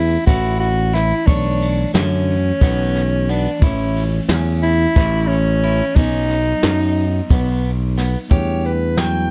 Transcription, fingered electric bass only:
0, 0, Header, 1, 2, 480
1, 0, Start_track
1, 0, Tempo, 670391
1, 914, Time_signature, 7, 3, 24, 8
1, 6663, End_track
2, 0, Start_track
2, 0, Title_t, "Fingered electric bass"
2, 0, Program_c, 0, 33
2, 0, Note_on_c, 0, 40, 88
2, 115, Note_off_c, 0, 40, 0
2, 194, Note_on_c, 0, 33, 101
2, 799, Note_off_c, 0, 33, 0
2, 913, Note_on_c, 0, 35, 89
2, 1317, Note_off_c, 0, 35, 0
2, 1391, Note_on_c, 0, 42, 91
2, 1795, Note_off_c, 0, 42, 0
2, 1870, Note_on_c, 0, 35, 101
2, 2477, Note_off_c, 0, 35, 0
2, 2591, Note_on_c, 0, 33, 96
2, 2995, Note_off_c, 0, 33, 0
2, 3068, Note_on_c, 0, 40, 99
2, 3474, Note_off_c, 0, 40, 0
2, 3552, Note_on_c, 0, 33, 111
2, 4157, Note_off_c, 0, 33, 0
2, 4267, Note_on_c, 0, 35, 96
2, 4673, Note_off_c, 0, 35, 0
2, 4749, Note_on_c, 0, 42, 90
2, 5154, Note_off_c, 0, 42, 0
2, 5230, Note_on_c, 0, 35, 102
2, 5836, Note_off_c, 0, 35, 0
2, 5949, Note_on_c, 0, 40, 91
2, 6663, Note_off_c, 0, 40, 0
2, 6663, End_track
0, 0, End_of_file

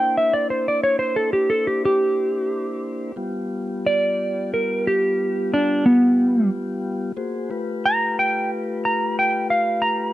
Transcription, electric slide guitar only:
0, 0, Header, 1, 2, 480
1, 0, Start_track
1, 0, Tempo, 665927
1, 2281, Time_signature, 12, 3, 24, 8
1, 7302, End_track
2, 0, Start_track
2, 0, Title_t, "Electric slide guitar"
2, 0, Program_c, 0, 29
2, 0, Note_on_c, 0, 79, 86
2, 109, Note_off_c, 0, 79, 0
2, 126, Note_on_c, 0, 76, 83
2, 238, Note_off_c, 0, 76, 0
2, 241, Note_on_c, 0, 74, 82
2, 355, Note_off_c, 0, 74, 0
2, 363, Note_on_c, 0, 72, 76
2, 476, Note_off_c, 0, 72, 0
2, 491, Note_on_c, 0, 74, 69
2, 599, Note_off_c, 0, 74, 0
2, 602, Note_on_c, 0, 73, 83
2, 710, Note_off_c, 0, 73, 0
2, 713, Note_on_c, 0, 72, 83
2, 832, Note_off_c, 0, 72, 0
2, 838, Note_on_c, 0, 69, 81
2, 955, Note_off_c, 0, 69, 0
2, 959, Note_on_c, 0, 67, 74
2, 1075, Note_off_c, 0, 67, 0
2, 1080, Note_on_c, 0, 69, 82
2, 1196, Note_off_c, 0, 69, 0
2, 1206, Note_on_c, 0, 67, 66
2, 1319, Note_off_c, 0, 67, 0
2, 1337, Note_on_c, 0, 67, 92
2, 2261, Note_off_c, 0, 67, 0
2, 2786, Note_on_c, 0, 74, 91
2, 3240, Note_off_c, 0, 74, 0
2, 3270, Note_on_c, 0, 70, 73
2, 3489, Note_off_c, 0, 70, 0
2, 3513, Note_on_c, 0, 67, 83
2, 3964, Note_off_c, 0, 67, 0
2, 3990, Note_on_c, 0, 62, 89
2, 4209, Note_off_c, 0, 62, 0
2, 4222, Note_on_c, 0, 59, 98
2, 4678, Note_off_c, 0, 59, 0
2, 5662, Note_on_c, 0, 82, 96
2, 5884, Note_off_c, 0, 82, 0
2, 5904, Note_on_c, 0, 79, 89
2, 6125, Note_off_c, 0, 79, 0
2, 6380, Note_on_c, 0, 82, 81
2, 6603, Note_off_c, 0, 82, 0
2, 6623, Note_on_c, 0, 79, 91
2, 6844, Note_off_c, 0, 79, 0
2, 6850, Note_on_c, 0, 77, 75
2, 7077, Note_off_c, 0, 77, 0
2, 7077, Note_on_c, 0, 82, 76
2, 7302, Note_off_c, 0, 82, 0
2, 7302, End_track
0, 0, End_of_file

